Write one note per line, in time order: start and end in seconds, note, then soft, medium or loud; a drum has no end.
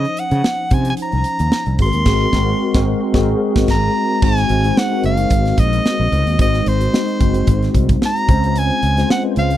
0.00 0.61 F3 medium
0.00 0.61 C#4 medium
0.00 0.61 D#4 medium
0.00 0.61 C5 medium
0.00 0.21 D#5 medium
0.05 closed hi-hat soft
0.17 0.75 F#5 loud
0.17 closed hi-hat medium
0.31 0.41 C#3 loud
0.31 closed hi-hat soft
0.44 snare loud
0.71 0.92 C3 medium
0.71 1.69 F3 medium
0.71 1.69 C#4 medium
0.71 1.69 D#4 medium
0.71 1.70 C5 medium
0.71 0.87 G#5 medium
0.71 kick loud
0.71 closed hi-hat medium
0.85 closed hi-hat medium
0.90 0.95 G#5 medium
0.97 closed hi-hat medium
1.03 1.78 A#5 loud
1.12 1.22 C2 medium
1.12 closed hi-hat soft
1.24 closed hi-hat medium
1.39 1.49 D#2 medium
1.39 closed hi-hat soft
1.52 snare loud
1.66 1.76 C2 medium
1.66 closed hi-hat soft
1.78 1.90 G#1 medium
1.78 2.04 G#3 medium
1.78 2.05 C4 medium
1.78 2.05 F#4 medium
1.78 1.87 G#4 medium
1.78 2.85 C6 loud
1.78 kick medium
1.78 open hi-hat medium
1.86 2.10 A#4 medium
1.93 2.03 D#2 medium
1.93 closed hi-hat soft
2.05 2.25 G#1 loud
2.05 2.24 G#3 loud
2.05 2.25 C4 loud
2.05 2.25 F#4 medium
2.05 2.25 G#4 medium
2.05 kick loud
2.05 snare loud
2.05 crash medium
2.13 2.29 A#4 loud
2.33 2.52 G#1 loud
2.33 2.52 G#3 medium
2.33 2.53 C4 loud
2.33 2.53 F#4 loud
2.33 2.53 A#4 medium
2.33 kick medium
2.33 snare loud
2.74 2.93 G#1 medium
2.74 2.93 G#3 loud
2.74 2.93 C4 loud
2.74 2.93 F#4 loud
2.74 2.94 A#4 loud
2.74 kick loud
2.74 snare loud
3.13 3.33 G#1 loud
3.13 3.33 G#3 loud
3.13 3.33 C4 loud
3.13 3.33 F#4 loud
3.13 3.33 G#4 loud
3.13 kick loud
3.13 snare loud
3.21 3.37 A#4 medium
3.56 3.67 G#1 loud
3.56 kick loud
3.56 snare loud
3.68 3.87 G#1 loud
3.68 4.26 A#5 loud
3.68 kick loud
3.68 snare medium
3.68 crash medium
4.22 4.43 G#1 loud
4.22 4.59 G#3 medium
4.22 4.59 C4 medium
4.22 4.60 D#4 medium
4.22 4.60 F#4 medium
4.22 4.60 C5 medium
4.22 4.80 G#5 loud
4.22 kick loud
4.22 crash medium
4.37 snare soft
4.37 closed hi-hat soft
4.49 4.70 G#1 loud
4.49 closed hi-hat medium
4.64 4.88 G#3 medium
4.64 4.89 C4 medium
4.64 4.89 D#4 medium
4.64 4.89 F#4 medium
4.64 4.89 C5 medium
4.64 closed hi-hat medium
4.77 5.04 F#5 loud
4.77 snare loud
4.90 5.87 G#3 medium
4.90 5.87 C4 medium
4.90 5.88 D#4 medium
4.90 5.87 F#4 medium
4.90 5.88 A#4 medium
5.04 5.24 F#1 medium
5.04 5.61 F5 loud
5.04 closed hi-hat medium
5.17 closed hi-hat medium
5.30 5.51 G#1 medium
5.30 kick medium
5.30 closed hi-hat medium
5.46 snare soft
5.46 closed hi-hat soft
5.58 5.78 A#1 medium
5.58 6.40 D#5 medium
5.58 kick medium
5.58 closed hi-hat medium
5.73 closed hi-hat medium
5.86 snare loud
5.99 6.09 A#1 medium
6.12 6.23 C#2 loud
6.12 closed hi-hat medium
6.26 6.36 D#2 medium
6.26 closed hi-hat soft
6.38 6.60 G#1 loud
6.38 6.88 G#3 medium
6.38 6.88 C4 medium
6.38 6.88 D#4 medium
6.38 6.88 F#4 medium
6.38 6.88 C5 medium
6.38 6.69 D#5 loud
6.38 kick loud
6.38 closed hi-hat medium
6.54 snare soft
6.54 closed hi-hat soft
6.66 6.87 G#1 loud
6.66 7.75 C5 medium
6.66 closed hi-hat medium
6.81 closed hi-hat soft
6.92 7.17 G#3 medium
6.92 7.17 C4 medium
6.92 7.18 D#4 medium
6.92 7.18 F#4 medium
6.92 7.18 D#5 medium
6.92 snare loud
7.08 closed hi-hat soft
7.19 7.41 F#1 medium
7.19 8.17 G#3 medium
7.19 8.18 C4 medium
7.19 8.18 D#4 medium
7.19 8.18 F#4 medium
7.19 8.18 C5 medium
7.19 kick loud
7.19 closed hi-hat medium
7.34 closed hi-hat medium
7.47 7.68 G#1 loud
7.47 kick medium
7.47 closed hi-hat medium
7.62 snare soft
7.62 closed hi-hat soft
7.74 7.95 C2 medium
7.74 kick medium
7.74 closed hi-hat medium
7.89 kick medium
7.89 closed hi-hat soft
8.02 8.60 A#5 loud
8.02 snare loud
8.16 closed hi-hat soft
8.28 8.70 C#2 loud
8.28 8.89 G#3 medium
8.28 8.89 C4 medium
8.28 8.89 C#4 medium
8.28 8.90 F4 medium
8.28 8.90 C5 medium
8.28 kick loud
8.28 closed hi-hat medium
8.44 closed hi-hat soft
8.56 9.11 G#5 loud
8.56 closed hi-hat medium
8.70 closed hi-hat soft
8.83 9.03 C#2 loud
8.83 closed hi-hat medium
8.97 9.21 G#3 medium
8.97 9.21 C4 medium
8.97 9.21 C#4 medium
8.97 9.21 F4 medium
8.97 9.21 C5 medium
8.97 snare soft
8.97 closed hi-hat medium
9.10 9.23 F#5 medium
9.10 snare loud
9.23 9.57 G#3 medium
9.23 9.57 C4 medium
9.23 9.57 C#4 medium
9.23 9.57 F4 medium
9.23 9.30 B4 medium
9.31 9.57 C5 medium
9.36 9.57 C#2 loud
9.36 9.57 F5 medium
9.36 closed hi-hat medium
9.50 closed hi-hat medium